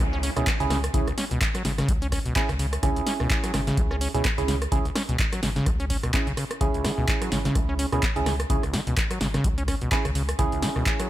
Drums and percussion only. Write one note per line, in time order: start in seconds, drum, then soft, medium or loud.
0.00 cross-stick medium
0.00 closed hi-hat medium
0.23 open hi-hat loud
0.37 cross-stick medium
0.37 closed hi-hat soft
0.47 kick loud
0.47 clap loud
0.47 closed hi-hat medium
0.60 closed hi-hat soft
0.70 cross-stick medium
0.70 snare medium
0.70 open hi-hat loud
0.84 cross-stick medium
0.84 closed hi-hat medium
0.94 kick loud
0.94 closed hi-hat medium
1.08 cross-stick medium
1.08 closed hi-hat soft
1.18 snare medium
1.18 open hi-hat loud
1.31 closed hi-hat soft
1.41 kick loud
1.41 cross-stick medium
1.41 clap loud
1.41 closed hi-hat medium
1.55 cross-stick medium
1.55 closed hi-hat medium
1.65 snare medium
1.65 open hi-hat loud
1.78 cross-stick medium
1.78 snare soft
1.78 closed hi-hat soft
1.88 kick loud
1.88 closed hi-hat medium
2.02 closed hi-hat soft
2.12 kick medium
2.12 cross-stick medium
2.12 open hi-hat loud
2.26 closed hi-hat soft
2.36 kick loud
2.36 clap loud
2.36 closed hi-hat medium
2.49 cross-stick medium
2.49 closed hi-hat soft
2.59 open hi-hat loud
2.73 cross-stick medium
2.73 closed hi-hat medium
2.83 kick loud
2.83 cross-stick medium
2.83 closed hi-hat medium
2.96 closed hi-hat soft
3.07 snare medium
3.07 open hi-hat loud
3.20 cross-stick medium
3.30 kick loud
3.30 clap loud
3.30 closed hi-hat medium
3.44 cross-stick medium
3.44 closed hi-hat medium
3.54 cross-stick medium
3.54 snare medium
3.54 open hi-hat loud
3.67 snare soft
3.67 closed hi-hat soft
3.77 kick loud
3.77 closed hi-hat medium
3.91 cross-stick medium
4.01 open hi-hat loud
4.15 closed hi-hat soft
4.25 kick loud
4.25 cross-stick medium
4.25 clap loud
4.25 closed hi-hat medium
4.38 closed hi-hat soft
4.48 snare medium
4.48 open hi-hat loud
4.62 cross-stick medium
4.62 closed hi-hat medium
4.72 kick loud
4.72 closed hi-hat medium
4.85 closed hi-hat soft
4.96 cross-stick medium
4.96 snare medium
4.96 open hi-hat loud
5.09 closed hi-hat soft
5.19 kick loud
5.19 clap loud
5.19 closed hi-hat medium
5.33 cross-stick medium
5.33 closed hi-hat medium
5.43 snare medium
5.43 open hi-hat loud
5.56 snare soft
5.56 closed hi-hat soft
5.66 kick loud
5.66 cross-stick medium
5.66 closed hi-hat medium
5.80 closed hi-hat soft
5.90 kick medium
5.90 open hi-hat loud
6.03 cross-stick medium
6.03 closed hi-hat soft
6.14 kick loud
6.14 clap loud
6.14 closed hi-hat medium
6.27 closed hi-hat soft
6.37 cross-stick medium
6.37 open hi-hat loud
6.51 cross-stick medium
6.51 closed hi-hat soft
6.61 kick loud
6.61 closed hi-hat medium
6.74 closed hi-hat soft
6.85 cross-stick medium
6.85 snare medium
6.85 open hi-hat loud
7.08 kick loud
7.08 clap loud
7.08 closed hi-hat medium
7.22 cross-stick medium
7.22 closed hi-hat medium
7.32 snare medium
7.32 open hi-hat loud
7.45 snare soft
7.45 closed hi-hat soft
7.55 kick loud
7.55 cross-stick medium
7.55 closed hi-hat medium
7.79 open hi-hat loud
7.92 cross-stick medium
7.92 closed hi-hat soft
8.03 kick loud
8.03 clap loud
8.03 closed hi-hat medium
8.16 closed hi-hat soft
8.26 cross-stick medium
8.26 snare medium
8.26 open hi-hat loud
8.40 cross-stick medium
8.40 closed hi-hat soft
8.50 kick loud
8.50 closed hi-hat medium
8.63 cross-stick medium
8.63 closed hi-hat soft
8.74 snare medium
8.74 open hi-hat loud
8.87 closed hi-hat soft
8.97 kick loud
8.97 cross-stick medium
8.97 clap loud
8.97 closed hi-hat medium
9.11 cross-stick medium
9.11 closed hi-hat medium
9.21 snare medium
9.21 open hi-hat loud
9.34 cross-stick medium
9.34 snare soft
9.34 closed hi-hat soft
9.44 kick loud
9.44 closed hi-hat medium
9.58 closed hi-hat soft
9.68 kick medium
9.68 cross-stick medium
9.68 open hi-hat loud
9.81 closed hi-hat soft
9.92 kick loud
9.92 clap loud
9.92 closed hi-hat medium
10.05 cross-stick medium
10.05 closed hi-hat soft
10.15 open hi-hat loud
10.29 cross-stick medium
10.29 closed hi-hat medium
10.39 kick loud
10.39 cross-stick medium
10.39 closed hi-hat medium
10.52 closed hi-hat soft
10.62 snare medium
10.62 open hi-hat loud
10.76 cross-stick medium
10.86 kick loud
10.86 clap loud
10.86 closed hi-hat medium
11.00 cross-stick medium
11.00 closed hi-hat medium